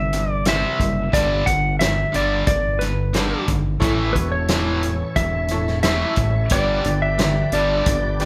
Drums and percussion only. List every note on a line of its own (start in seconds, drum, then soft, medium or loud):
0.13 closed hi-hat medium
0.45 snare medium
0.45 closed hi-hat medium
0.80 kick medium
0.80 closed hi-hat medium
1.13 kick loud
1.13 closed hi-hat medium
1.47 kick medium
1.47 closed hi-hat medium
1.80 snare loud
1.80 closed hi-hat medium
2.14 closed hi-hat medium
2.47 kick loud
2.47 closed hi-hat medium
2.81 snare soft
2.81 closed hi-hat medium
3.14 snare medium
3.14 closed hi-hat medium
3.48 kick medium
3.48 closed hi-hat medium
3.82 kick loud
3.82 closed hi-hat medium
4.15 kick medium
4.15 closed hi-hat medium
4.48 snare loud
4.48 closed hi-hat medium
4.83 closed hi-hat medium
5.16 kick loud
5.16 closed hi-hat medium
5.48 closed hi-hat medium
5.67 snare soft
5.83 snare loud
5.83 closed hi-hat medium
6.16 kick medium
6.16 closed hi-hat medium
6.49 kick loud
6.49 closed hi-hat medium
6.84 closed hi-hat medium
7.19 snare loud
7.19 closed hi-hat medium
7.52 closed hi-hat medium
7.86 kick loud
7.86 closed hi-hat medium
8.20 snare soft
8.20 closed hi-hat medium